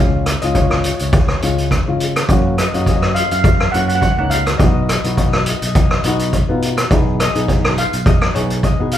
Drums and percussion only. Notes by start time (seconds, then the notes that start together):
0.26 cross-stick, closed hi-hat
0.42 closed hi-hat
0.55 kick, closed hi-hat
0.71 cross-stick
0.84 closed hi-hat
0.99 closed hi-hat
1.13 kick, closed hi-hat
1.28 cross-stick
1.42 closed hi-hat
1.58 closed hi-hat
1.71 kick, cross-stick, closed hi-hat
2.00 closed hi-hat
2.16 cross-stick, closed hi-hat
2.29 kick, closed hi-hat
2.58 cross-stick, closed hi-hat
2.74 closed hi-hat
2.86 kick, closed hi-hat
3.02 cross-stick
3.16 closed hi-hat
3.31 closed hi-hat
3.44 kick, closed hi-hat
3.60 cross-stick
3.74 closed hi-hat
3.89 closed hi-hat
4.02 kick, closed hi-hat
4.31 closed hi-hat
4.46 cross-stick, closed hi-hat
4.59 kick, closed hi-hat
4.89 cross-stick, closed hi-hat
5.04 closed hi-hat
5.17 kick, closed hi-hat
5.33 cross-stick
5.46 closed hi-hat
5.62 closed hi-hat
5.75 kick, closed hi-hat
5.91 cross-stick
6.04 closed hi-hat
6.19 closed hi-hat
6.33 kick, closed hi-hat
6.62 closed hi-hat
6.77 cross-stick, closed hi-hat
6.91 kick, closed hi-hat
7.20 cross-stick, closed hi-hat
7.35 closed hi-hat
7.48 kick, closed hi-hat
7.65 cross-stick
7.78 closed hi-hat
7.93 closed hi-hat
8.06 kick, closed hi-hat
8.22 cross-stick
8.35 closed hi-hat
8.50 closed hi-hat
8.63 kick, closed hi-hat
8.91 closed hi-hat